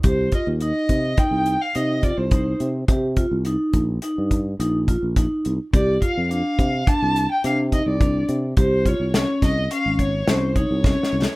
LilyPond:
<<
  \new Staff \with { instrumentName = "Violin" } { \time 5/4 \key c \dorian \tempo 4 = 106 c''8 ees''8 ees''4 g''8. f''16 ees''8 d''16 c''8. r8 | r1 r4 | d''8 f''8 f''4 a''8. g''16 f''8 ees''16 d''8. r8 | c''8 des''8 des''8 ees''8 f''8 des''8 c''8 des''4. | }
  \new Staff \with { instrumentName = "Vibraphone" } { \time 5/4 \key c \dorian g'8 f'8 ees'4 ees'4 ees'8 f'8 ees'4 | g'8 f'8 ees'4 ees'4 ees'8 f'8 ees'4 | g'8 f'8 d'4 d'4 d'8 ees'8 d'4 | g'8 f'8 des'4 des'4 des'8 ees'8 des'4 | }
  \new Staff \with { instrumentName = "Fretless electric bass" } { \clef bass \time 5/4 \key c \dorian c,8 r16 ees,8 r16 c8 r16 c,8 r16 c8. c,8. c8 | c8. c,8 r16 bes,,8 r16 g,8. bes,,8. bes,,8 r16 c,16 r16 | c,8 r16 f,8 r16 c8 r16 c,8 r16 c8. c,8. c8 | c,8. c,8 r16 c,8 r16 aes,,8. c,8. c,8 r16 c,16 r16 | }
  \new DrumStaff \with { instrumentName = "Drums" } \drummode { \time 5/4 <hh bd>8 <hh bd>8 hh8 <hh bd>8 <hh bd>8 hh8 hh8 <hh bd>8 <hh bd>8 hh8 | <hh bd>8 <hh bd>8 hh8 <hh bd>8 hh8 <hh bd>8 hh8 <hh bd>8 <hh bd>8 hh8 | <hh bd>8 <hh bd>8 hh8 <hh bd>8 <hh bd>8 hh8 hh8 <hh bd>8 <hh bd>8 hh8 | <hh bd>8 <hh bd>8 <hh sn>8 <hh bd sn>8 hh8 <hh bd>8 <hh sn>8 <hh bd>8 \tuplet 3/2 { <bd sn>8 sn8 sn8 } | }
>>